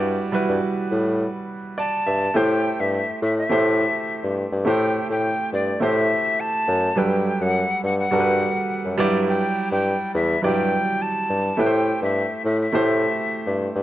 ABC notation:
X:1
M:4/4
L:1/16
Q:1/4=104
K:Ador
V:1 name="Flute"
z12 a4 | g3 e3 e e6- e z2 | g3 g3 d2 e4 a4 | g3 f3 f f6- f z2 |
g3 g3 e2 g4 a4 | g3 e3 e e6- e z2 |]
V:2 name="Grand piano"
[G,EFd]2 [G,EFB]6 z4 d2 e2 | [A,EGc]6 z2 [A,EGc]6 z2 | [A,EGc]6 z2 [A,EGc]6 z2 | [F,G,AB]6 z2 [G,FA_B=B]6 [F,G,Ed]2- |
[F,G,Ed]4 z4 [F,G,Ed]6 z2 | [A,EGBc]6 z2 [A,EGc]6 z2 |]
V:3 name="Bassoon" clef=bass
G,,2 z G,, z2 A,,3 z4 z G,,2 | A,,3 G,,2 z A,,2 A,,3 z2 G,,2 G,, | A,,3 A,,2 z G,,2 A,,3 z3 F,,2 | G,,3 F,,2 z G,,2 G,,3 z2 F,, G,,2- |
G,,2 z G,,2 z E,,2 G,,3 z3 G,,2 | A,,3 G,,2 z A,,2 A,,3 z2 G,,2 G,, |]